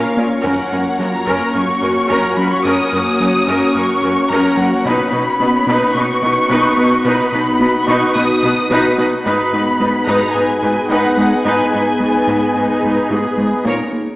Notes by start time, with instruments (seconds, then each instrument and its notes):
Already playing: ambient pad A#3 C#4 F4 C#5, viola section C#4 A#4, violin section F5
0.17 cello section A#2, analog synth bass A#3, viola section C#4 A#4, violin section C#5
0.32 violin section C#5
0.44 analog synth bass F#2, cello section F#2, ambient pad A#3 C#4 F#4 C#5, viola section C#4 A#4, violin section F#5, taiko
0.72 analog synth bass F#2, cello section F#2, viola section C#4 A#4
0.99 cello section F#2, analog synth bass F#3, viola section C#4 A#4, violin section A#5
1.26 analog synth bass F#2, cello section F#2, viola section C#4 A#4, taiko
1.53 analog synth bass F#2, cello section F#2, viola section C#4 A#4, violin section C#6
1.82 analog synth bass F#2, cello section F#2, viola section C#4 A#4
2.09 analog synth bass F#2, cello section F#2, viola section C#4 A#4, violin section A#5
2.37 cello section F#2, analog synth bass F#3, viola section C#4 A#4, violin section B5
2.53 violin section C#6
2.65 cello section F#2, analog synth bass F#2, viola section C#4 A#4, violin section D#6
2.92 analog synth bass F#2, cello section F#2, viola section C#4 A#4
3.19 cello section F#2, analog synth bass F#3, viola section C#4 A#4
3.47 analog synth bass F#2, cello section F#2, viola section C#4 A#4
3.74 analog synth bass F#2, cello section F#2, viola section C#4 A#4, violin section C#6
4.02 analog synth bass F#2, cello section F#2, viola section C#4 A#4
4.30 analog synth bass F#2, cello section F#2, viola section C#4 A#4, violin section A#5
4.57 cello section F#2, analog synth bass F#3, viola section C#4 A#4, violin section F#5
4.72 violin section F#5
4.85 cello section B2, analog synth bass B2, ambient pad B3 D#4 F#4 B4, viola section D#4 B4, violin section B5, taiko
5.12 analog synth bass B2, cello section B2, viola section D#4 B4
5.40 cello section B2, analog synth bass B3, viola section D#4 B4
5.67 analog synth bass B2, cello section B2, viola section D#4 B4
5.95 analog synth bass B2, cello section B2, viola section D#4 B4, violin section C#6
6.22 analog synth bass B2, cello section B2, viola section D#4 B4
6.49 analog synth bass B2, cello section B2, viola section D#4 B4
6.77 cello section B2, analog synth bass B3, viola section D#4 B4
7.05 analog synth bass B2, cello section B2, viola section D#4 B4, violin section B5
7.32 analog synth bass B2, cello section B2, viola section D#4 B4
7.60 cello section B2, analog synth bass B3, viola section D#4 B4
7.87 cello section B2, analog synth bass B2, viola section D#4 B4, violin section C#6
8.15 analog synth bass B2, cello section B2, viola section D#4 B4, violin section D#6
8.43 cello section B2, analog synth bass B2, viola section D#4 B4
8.70 cello section B2, analog synth bass B2, viola section D#4 B4
8.98 cello section B2, analog synth bass B3, viola section D#4 B4
9.25 cello section G#2, analog synth bass G#2, ambient pad B3 D#4 G#4 B4, viola section D#4 B4, violin section B5, taiko
9.52 analog synth bass G#2, cello section G#2, viola section D#4 B4
9.80 cello section G#2, analog synth bass G#3, viola section D#4 B4
10.07 analog synth bass G#2, cello section G#2, viola section D#4 B4, violin section A#5
10.34 analog synth bass G#2, cello section G#2, viola section D#4 B4, violin section G#5
10.62 analog synth bass G#2, cello section G#2, viola section D#4 B4
10.90 analog synth bass G#2, cello section G#2, viola section D#4 B4, violin section F#5
11.17 cello section G#2, analog synth bass G#3, viola section D#4 B4
11.45 cello section G#2, analog synth bass G#2, viola section D#4 B4, violin section G#5
11.73 cello section G#2, analog synth bass G#2, viola section D#4 B4
12.00 cello section G#2, analog synth bass G#3, viola section B3
12.27 analog synth bass G#2, cello section G#2
12.55 analog synth bass G#2, cello section G#2, viola section D#4
12.82 analog synth bass G#2, cello section G#2
13.10 analog synth bass G#2, cello section G#2, viola section G#4
13.37 cello section G#2, analog synth bass G#3
13.65 cello section A#2, analog synth bass A#2, ambient pad A#3 C#4 F4 C#5, viola section C#4 F4, violin section A#4 C#5, taiko
13.92 analog synth bass A#3